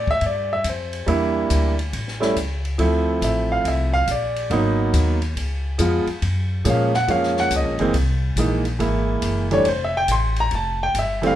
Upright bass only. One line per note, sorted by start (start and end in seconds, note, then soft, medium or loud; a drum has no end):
0.00 0.20 A2 medium
0.21 0.63 G2 medium
0.64 1.06 F2 medium
1.07 1.49 E2 medium
1.50 1.92 D2 medium
1.93 2.35 A1 medium
2.36 2.78 C#2 medium
2.79 3.21 D2 medium
3.21 3.63 A1 medium
3.64 4.06 C2 medium
4.07 4.49 A#1 medium
4.50 4.92 G#1 medium
4.93 5.35 D#2 medium
5.36 5.78 C#2 medium
5.79 6.05 F2 medium
6.06 muted upright bass stroke soft
6.22 6.64 F#2 medium
6.65 7.07 A#2 medium
7.08 7.50 F2 medium
7.51 7.64 C#2 medium
7.64 7.77 A#1 medium
7.78 7.92 F#1 medium
7.93 8.35 C2 medium
8.36 8.78 A#1 medium
8.79 9.21 G#1 medium
9.22 9.64 F#1 medium
9.65 10.06 F1 medium
10.08 10.49 A1 medium
10.51 10.93 F1 medium
10.94 11.35 G1 medium